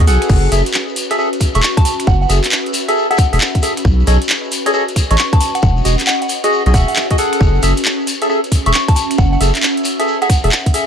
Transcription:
Already playing: C#4 F#4 B4 D#5
0.07 B1 G#4 A4 F#5, open hi-hat, shekere
0.22 finger snap, closed hi-hat, shekere
0.29 F#1, kick, crash, shekere
0.44 shekere
0.52 F#1 G#4 A4 E5, open hi-hat, shekere
0.66 closed hi-hat, shekere
0.73 clap, shekere
0.88 shekere
0.96 open hi-hat, shekere
1.10 G#4 A4 E5, closed hi-hat, shekere
1.18 G#4 A4 E5, shekere
1.33 closed hi-hat, shekere
1.41 finger snap, kick, open hi-hat, shekere
1.54 E1 G#4 A4 E5 C#6, closed hi-hat, shekere
1.63 C#6, clap, shekere
1.77 A5, kick, closed hi-hat, shekere
1.85 A5, open hi-hat, shekere
2.00 finger snap, closed hi-hat, shekere
2.07 F#1 F#5, kick, shekere
2.22 F#5, shekere
2.29 F#1 G#4 A4 E5, open hi-hat, shekere
2.44 clap, closed hi-hat, shekere
2.52 clap, shekere
2.66 closed hi-hat, shekere
2.73 open hi-hat, shekere
2.88 G#4 A4 E5, closed hi-hat, shekere
2.97 shekere
3.11 G#4 A4 E5 F#5, closed hi-hat, shekere
3.18 finger snap, kick, open hi-hat, shekere
3.33 E1 G#4 A4 E5, open hi-hat, shekere
3.41 clap, shekere
3.55 kick, closed hi-hat, shekere
3.63 G#4 A4 E5, open hi-hat, shekere
3.77 finger snap, closed hi-hat, shekere
3.85 B1 C#4, kick, shekere
4.00 shekere
4.07 B1 G#4 A4 C#5 D#5, open hi-hat, shekere
4.22 closed hi-hat, shekere
4.29 clap, shekere
4.43 shekere
4.52 open hi-hat, shekere
4.56 D#5
4.66 G#4 A4 C#5 D#5, closed hi-hat, shekere
4.74 G#4 A4 C#5 D#5, shekere
4.88 closed hi-hat, shekere
4.96 finger snap, kick, open hi-hat, shekere
5.11 A1 G#4 A4 C#5 D#5 C#6, closed hi-hat, shekere
5.18 C#6, clap, shekere
5.32 A5, kick, closed hi-hat, shekere
5.40 A5, open hi-hat, shekere
5.55 F#5, finger snap, closed hi-hat, shekere
5.63 E1 F#5, kick, shekere
5.77 shekere
5.85 E1 F#4 G#4 D#5, open hi-hat, shekere
5.99 clap, closed hi-hat, shekere
6.07 F#5, clap, shekere
6.22 F#5, closed hi-hat, shekere
6.29 open hi-hat, shekere
6.44 F#4 G#4 D#5, closed hi-hat, shekere
6.52 shekere
6.66 B1 F#4 G#4 D#5, closed hi-hat, shekere
6.74 E1 F#4 G#4 E5 F#5, finger snap, kick, open hi-hat, shekere
6.88 F#5, open hi-hat, shekere
6.96 clap, shekere
7.10 F#4 G#4 D#5, kick, closed hi-hat, shekere
7.18 G#4 A4 F#5, open hi-hat, shekere
7.33 finger snap, closed hi-hat, shekere
7.41 F#1, kick, shekere
7.54 shekere
7.63 F#1 G#4 A4 E5, open hi-hat, shekere
7.77 closed hi-hat, shekere
7.84 clap, shekere
8.00 shekere
8.07 open hi-hat, shekere
8.22 G#4 A4 E5, closed hi-hat, shekere
8.29 G#4 A4 E5, shekere
8.44 closed hi-hat, shekere
8.52 finger snap, kick, open hi-hat, shekere
8.65 E1 G#4 A4 E5 C#6, closed hi-hat, shekere
8.74 C#6, clap, shekere
8.88 A5, kick, closed hi-hat, shekere
8.96 A5, open hi-hat, shekere
9.11 finger snap, closed hi-hat, shekere
9.18 F#1 F#5, kick, shekere
9.32 F#5, shekere
9.41 F#1 G#4 A4 E5, open hi-hat, shekere
9.55 clap, closed hi-hat, shekere
9.63 clap, shekere
9.77 closed hi-hat, shekere
9.84 open hi-hat, shekere
10.00 G#4 A4 E5, closed hi-hat, shekere
10.08 shekere
10.22 G#4 A4 E5 F#5, closed hi-hat, shekere
10.30 finger snap, kick, open hi-hat, shekere
10.44 E1 G#4 A4 E5, open hi-hat, shekere
10.52 clap, shekere
10.66 kick, closed hi-hat, shekere
10.74 G#4 A4 E5, open hi-hat, shekere

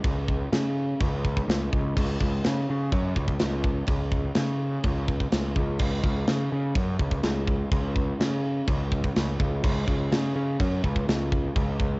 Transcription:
0.03 C#2, kick, china
0.28 kick
0.52 C#3, snare, china
1.00 C#2, kick, china
1.25 kick
1.37 kick
1.48 C#2, snare, china
1.73 C#2, kick
1.97 C#2, kick, crash, china
2.21 C#2, kick
2.44 C#3, snare, china
2.70 C#3
2.92 F#2, kick, china
3.16 C#2, kick
3.28 kick
3.39 C#2, snare, china
3.64 kick
3.87 C#2, kick, china
4.12 kick
4.35 C#3, snare, china
4.83 C#2, kick, china
5.08 kick
5.20 kick
5.32 C#2, snare, china
5.56 C#2, kick
5.79 C#2, kick, china, crash
6.03 C#2, kick
6.27 C#3, snare, china
6.52 C#3
6.75 F#2, kick, china
6.99 C#2, kick
7.11 kick
7.23 C#2, snare, china
7.48 kick
7.71 C#2, kick, china
7.96 kick
8.20 C#3, snare, china
8.68 C#2, kick, china
8.92 kick
9.04 kick
9.16 C#2, snare, china
9.40 C#2, kick
9.64 C#2, kick, china, crash
9.88 C#2, kick
10.12 C#3, snare, china
10.36 C#3
10.60 F#2, kick, china
10.84 C#2, kick
10.96 kick
11.08 C#2, snare, china
11.32 kick
11.55 C#2, kick, china
11.80 kick

